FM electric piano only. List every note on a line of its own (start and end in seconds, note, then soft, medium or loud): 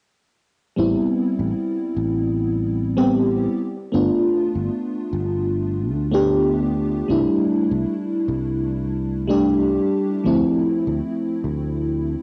0.76 2.91 G3 medium
0.76 2.92 B3 medium
0.76 2.92 C4 medium
0.76 2.93 E4 medium
2.97 3.52 G3 medium
2.97 3.52 B3 medium
2.97 3.53 C4 medium
2.97 3.53 G4 loud
3.92 6.07 A3 medium
3.92 6.08 B3 medium
3.92 6.08 D4 medium
3.92 6.08 F4 medium
6.12 7.05 A3 medium
6.12 7.05 B3 medium
6.12 7.06 D4 medium
6.12 7.06 G4 loud
7.08 9.23 G3 medium
7.08 9.23 A3 medium
7.08 9.24 D4 medium
7.08 9.25 E4 medium
9.28 10.21 G3 medium
9.28 10.22 A3 medium
9.28 10.22 D4 medium
9.28 10.22 G4 loud
10.24 12.22 F3 medium
10.24 12.22 A3 medium
10.24 12.22 C4 medium
10.24 12.22 E4 medium